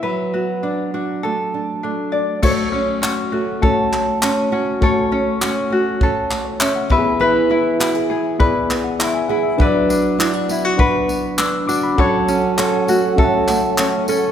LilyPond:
<<
  \new Staff \with { instrumentName = "Flute section" } { \time 4/4 \key fis \minor \tempo 4 = 100 r1 | r1 | r1 | r1 |
r1 | <a' cis'' fis''>1 | }
  \new Staff \with { instrumentName = "Reed electric piano" } { \time 4/4 \key fis \minor << { r1 | r1 | r2 r8. cis''16 e''16 fis''8 r16 | r2 r8. fis''16 e''16 gis''16 fis''16 e''16~ |
e''16 r2 r8. e'''8 d'''16 b''16~ | b''16 r2. r8. | } \\ { r1 | <a fis' c'' cis''>4. r8 <a fis' cis''>4. r8 | <a fis' cis''>4. r2 <b g' gis' e''>8~ | <b g' gis' e''>4 r4 <b gis' d''>4. r8 |
<d' b' fis''>4. r8 <d' b' fis''>4. r8 | <cis' a' fis''>4. r8 <cis' a' e'' fis''>4. r8 | } >> }
  \new Staff \with { instrumentName = "Ukulele" } { \time 4/4 \key fis \minor b'8 fis'8 d'8 d'8 a'4 d'8 d''8 | <a' cis''>8 cis'8 cis'8 fis'8 a'4 cis'8 cis'8 | <a' cis''>8 cis'8 cis'8 fis'8 a'4 cis'8 b'8 | <b' e''>8 e'8 e'8 gis'8 b'4 e'8 e'8 |
<b' d''>8 d'8 d'8 e'16 fis'16 b'4 d'8 d'8 | <a' cis''>8 cis'8 cis'8 fis'8 a'4 cis'8 cis'8 | }
  \new Staff \with { instrumentName = "Nylon-string guitar" } { \time 4/4 \key fis \minor fis8 b8 d'8 fis'8 a8 d'8 a8 d'8 | a8 cis'8 fis'8 a8 cis'8 a8 cis'8 fis'8 | a8 cis'8 fis'8 a8 cis'8 a8 cis'8 e8 | e8 e'8 fis'16 gis'16 b8 e'8 b8 e'8 gis'8 |
fis8 d'8 e'16 fis'16 b8 d'8 b8 d'8 fis'8 | fis8 cis'8 a'8 a8 cis'8 a8 cis'8 a'8 | }
  \new DrumStaff \with { instrumentName = "Drums" } \drummode { \time 4/4 r4 r4 r4 r4 | <cymc bd>4 hc4 bd8 hc8 hc4 | bd4 hc4 bd8 hc8 hc8 bd8 | r4 hc4 bd8 hc8 hc4 |
bd8 tamb8 hc8 tamb8 bd8 tamb8 hc8 tamb8 | bd8 tamb8 hc8 tamb8 bd8 <hc tamb>8 hc8 tamb8 | }
>>